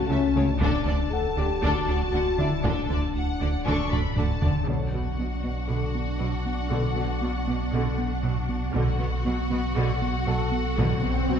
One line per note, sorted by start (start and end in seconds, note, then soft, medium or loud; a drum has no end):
0.00 0.64 C#2 medium
0.00 0.64 E5 soft
0.00 0.57 A5 medium
0.09 0.25 C#2 medium
0.09 0.18 C#2 medium
0.09 0.18 C#3 medium
0.09 0.19 A3 medium
0.09 0.48 C#4 medium
0.09 0.19 E5 medium
0.35 0.44 C#2 medium
0.35 0.51 C#3 medium
0.35 0.44 C#3 medium
0.35 0.44 A3 medium
0.35 0.45 C#5 medium
0.49 0.60 D4 medium
0.61 4.68 D1 medium
0.61 0.76 D2 medium
0.61 0.70 D2 medium
0.61 0.69 D3 medium
0.61 0.85 D4 medium
0.61 1.11 D4 medium
0.61 0.86 A4 medium
0.61 3.07 A5 medium
0.61 taiko loud
0.86 1.01 D2 medium
0.86 0.95 D2 medium
0.86 0.94 D3 soft
0.86 0.95 D4 soft
0.86 0.95 D5 medium
1.12 1.27 D2 medium
1.12 1.38 A4 medium
1.12 2.61 F#5 soft
1.36 1.53 D2 medium
1.36 1.45 D2 medium
1.36 1.44 D3 soft
1.36 1.47 D4 soft
1.36 1.63 G4 medium
1.36 1.46 D5 soft
1.62 1.78 D2 medium
1.62 1.71 D2 medium
1.62 1.70 D3 medium
1.62 1.86 D4 medium
1.62 2.39 F#4 medium
1.62 1.87 A4 medium
1.62 taiko medium
1.88 2.03 D2 medium
1.88 1.96 D2 soft
1.88 1.96 D3 soft
1.88 1.97 D4 soft
1.88 1.98 D5 soft
2.13 2.29 D2 medium
2.13 2.22 D2 soft
2.13 2.21 D3 soft
2.13 2.22 D4 soft
2.13 2.22 F#5 soft
2.38 2.47 D2 soft
2.38 2.46 D3 soft
2.38 2.54 D3 medium
2.38 2.47 D4 soft
2.38 2.64 E4 medium
2.38 3.89 E4 soft
2.38 2.48 D5 soft
2.38 3.89 E5 soft
2.63 2.79 D2 medium
2.63 2.73 D2 medium
2.63 2.71 D3 medium
2.63 4.39 D4 medium
2.63 2.88 D4 soft
2.63 2.89 A4 medium
2.63 taiko medium
2.89 3.05 D2 soft
2.89 2.98 D2 soft
2.89 2.97 D3 soft
2.89 2.98 D4 soft
2.89 3.00 D5 soft
3.15 3.30 D2 medium
3.15 3.63 F#5 medium
3.40 3.49 D2 soft
3.40 3.56 D2 medium
3.40 3.49 D3 soft
3.40 3.48 D4 soft
3.40 3.50 D5 soft
3.65 3.81 D2 medium
3.65 3.75 D2 medium
3.65 3.74 D3 medium
3.65 3.90 D4 medium
3.65 3.90 A4 medium
3.65 3.92 C#6 medium
3.65 taiko medium
3.91 4.07 D2 medium
3.91 4.01 D2 soft
3.91 4.00 D3 soft
3.91 3.99 D4 soft
3.91 4.00 D5 soft
3.91 4.65 D5 soft
3.91 4.17 B5 medium
3.91 taiko low-mid medium
4.16 4.32 D2 medium
4.16 4.25 D2 soft
4.16 4.25 D3 soft
4.16 4.24 D4 soft
4.16 4.27 F#5 soft
4.16 4.68 A5 medium
4.16 taiko low-mid medium
4.41 4.51 D2 soft
4.41 4.50 D3 soft
4.41 4.57 D3 medium
4.41 4.49 D4 soft
4.41 4.51 D5 soft
4.41 taiko low medium
4.67 4.92 B1 soft
4.67 8.71 B1 medium
4.67 4.83 B2 medium
4.67 4.76 B2 soft
4.67 4.91 D3 soft
4.67 8.70 D4 soft
4.67 8.72 F#4 soft
4.67 6.17 C#5 soft
4.67 8.72 F#5 soft
4.67 taiko soft
4.93 5.02 B2 soft
4.93 5.08 B3 soft
4.93 5.01 B3 soft
5.18 5.28 B2 soft
5.18 5.27 F#3 soft
5.18 5.34 B3 soft
5.44 5.52 B2 soft
5.44 5.59 B3 soft
5.44 5.52 B3 soft
5.44 taiko soft
5.68 5.76 B2 soft
5.68 5.85 B2 medium
5.68 5.93 D3 soft
5.95 6.10 B3 medium
6.19 6.27 B2 soft
6.19 6.36 B2 medium
6.19 6.29 F#3 soft
6.46 6.61 B3 medium
6.70 6.95 B1 soft
6.70 6.78 B2 soft
6.70 6.86 B2 medium
6.70 6.95 D3 soft
6.96 7.04 B2 soft
6.96 7.12 B3 soft
6.96 7.04 B3 soft
7.22 7.30 B2 soft
7.22 7.30 F#3 soft
7.22 7.37 B3 soft
7.47 7.55 B2 soft
7.47 7.63 B3 soft
7.47 7.56 B3 soft
7.73 7.88 B2 medium
7.73 7.81 B2 medium
7.73 7.97 D3 medium
7.98 8.13 B3 medium
8.23 8.39 B2 medium
8.23 8.32 B2 soft
8.23 8.32 F#3 soft
8.49 8.64 B3 medium
8.74 8.98 B1 medium
8.74 11.40 B1 medium
8.74 8.90 B2 medium
8.74 8.82 B2 medium
8.74 8.98 D3 medium
8.74 11.40 F#4 medium
8.74 11.40 F#5 medium
8.74 taiko medium
8.99 9.08 B2 soft
8.99 9.07 B3 soft
8.99 9.15 B3 medium
9.25 9.34 B2 medium
9.25 9.33 F#3 soft
9.25 9.40 B3 soft
9.50 9.59 B2 soft
9.50 9.66 B3 medium
9.50 9.59 B3 soft
9.76 9.91 B2 medium
9.76 9.84 B2 medium
9.76 10.00 D3 medium
10.02 10.17 B3 medium
10.27 10.35 B2 soft
10.27 10.42 B2 medium
10.27 10.35 F#3 soft
10.27 11.40 A4 medium
10.52 10.67 B3 medium
10.78 11.02 B1 medium
10.78 10.86 B2 medium
10.78 10.93 B2 medium
10.78 11.02 D3 soft
10.78 taiko medium
10.78 swell medium
11.03 11.12 B2 soft
11.03 11.19 B3 medium
11.03 11.11 B3 soft
11.28 11.36 B2 soft
11.28 11.37 F#3 soft
11.28 11.40 B3 medium